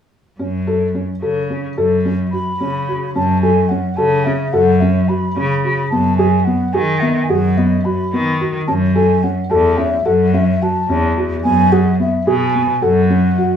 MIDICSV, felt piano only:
0, 0, Header, 1, 2, 480
1, 0, Start_track
1, 0, Tempo, 552486
1, 341, Time_signature, 5, 3, 24, 8
1, 11786, End_track
2, 0, Start_track
2, 0, Title_t, "Felt piano"
2, 0, Program_c, 0, 0
2, 337, Note_on_c, 0, 61, 51
2, 489, Note_off_c, 0, 61, 0
2, 581, Note_on_c, 0, 69, 51
2, 732, Note_off_c, 0, 69, 0
2, 818, Note_on_c, 0, 61, 47
2, 969, Note_off_c, 0, 61, 0
2, 1060, Note_on_c, 0, 69, 53
2, 1211, Note_off_c, 0, 69, 0
2, 1302, Note_on_c, 0, 61, 50
2, 1452, Note_off_c, 0, 61, 0
2, 1544, Note_on_c, 0, 69, 62
2, 1693, Note_off_c, 0, 69, 0
2, 1784, Note_on_c, 0, 61, 58
2, 1934, Note_off_c, 0, 61, 0
2, 2022, Note_on_c, 0, 66, 52
2, 2172, Note_off_c, 0, 66, 0
2, 2264, Note_on_c, 0, 61, 59
2, 2413, Note_off_c, 0, 61, 0
2, 2505, Note_on_c, 0, 66, 49
2, 2654, Note_off_c, 0, 66, 0
2, 2741, Note_on_c, 0, 61, 59
2, 2891, Note_off_c, 0, 61, 0
2, 2979, Note_on_c, 0, 69, 58
2, 3130, Note_off_c, 0, 69, 0
2, 3223, Note_on_c, 0, 61, 55
2, 3373, Note_off_c, 0, 61, 0
2, 3458, Note_on_c, 0, 69, 59
2, 3610, Note_off_c, 0, 69, 0
2, 3705, Note_on_c, 0, 61, 61
2, 3854, Note_off_c, 0, 61, 0
2, 3939, Note_on_c, 0, 69, 67
2, 4090, Note_off_c, 0, 69, 0
2, 4182, Note_on_c, 0, 61, 64
2, 4332, Note_off_c, 0, 61, 0
2, 4421, Note_on_c, 0, 66, 56
2, 4571, Note_off_c, 0, 66, 0
2, 4659, Note_on_c, 0, 61, 62
2, 4810, Note_off_c, 0, 61, 0
2, 4902, Note_on_c, 0, 66, 59
2, 5052, Note_off_c, 0, 66, 0
2, 5143, Note_on_c, 0, 59, 66
2, 5293, Note_off_c, 0, 59, 0
2, 5377, Note_on_c, 0, 68, 66
2, 5528, Note_off_c, 0, 68, 0
2, 5619, Note_on_c, 0, 59, 54
2, 5770, Note_off_c, 0, 59, 0
2, 5857, Note_on_c, 0, 68, 60
2, 6009, Note_off_c, 0, 68, 0
2, 6097, Note_on_c, 0, 59, 58
2, 6249, Note_off_c, 0, 59, 0
2, 6337, Note_on_c, 0, 68, 62
2, 6489, Note_off_c, 0, 68, 0
2, 6577, Note_on_c, 0, 59, 59
2, 6729, Note_off_c, 0, 59, 0
2, 6817, Note_on_c, 0, 66, 59
2, 6969, Note_off_c, 0, 66, 0
2, 7063, Note_on_c, 0, 59, 59
2, 7212, Note_off_c, 0, 59, 0
2, 7300, Note_on_c, 0, 66, 58
2, 7450, Note_off_c, 0, 66, 0
2, 7538, Note_on_c, 0, 61, 65
2, 7689, Note_off_c, 0, 61, 0
2, 7777, Note_on_c, 0, 69, 62
2, 7929, Note_off_c, 0, 69, 0
2, 8020, Note_on_c, 0, 61, 53
2, 8171, Note_off_c, 0, 61, 0
2, 8259, Note_on_c, 0, 69, 67
2, 8410, Note_off_c, 0, 69, 0
2, 8495, Note_on_c, 0, 61, 59
2, 8648, Note_off_c, 0, 61, 0
2, 8735, Note_on_c, 0, 69, 64
2, 8887, Note_off_c, 0, 69, 0
2, 8978, Note_on_c, 0, 61, 60
2, 9129, Note_off_c, 0, 61, 0
2, 9222, Note_on_c, 0, 66, 60
2, 9372, Note_off_c, 0, 66, 0
2, 9462, Note_on_c, 0, 61, 64
2, 9612, Note_off_c, 0, 61, 0
2, 9705, Note_on_c, 0, 66, 64
2, 9854, Note_off_c, 0, 66, 0
2, 9944, Note_on_c, 0, 59, 69
2, 10094, Note_off_c, 0, 59, 0
2, 10181, Note_on_c, 0, 68, 66
2, 10332, Note_off_c, 0, 68, 0
2, 10420, Note_on_c, 0, 59, 55
2, 10571, Note_off_c, 0, 59, 0
2, 10661, Note_on_c, 0, 68, 67
2, 10811, Note_off_c, 0, 68, 0
2, 10903, Note_on_c, 0, 59, 59
2, 11053, Note_off_c, 0, 59, 0
2, 11140, Note_on_c, 0, 69, 65
2, 11291, Note_off_c, 0, 69, 0
2, 11382, Note_on_c, 0, 61, 56
2, 11532, Note_off_c, 0, 61, 0
2, 11624, Note_on_c, 0, 66, 60
2, 11774, Note_off_c, 0, 66, 0
2, 11786, End_track
0, 0, End_of_file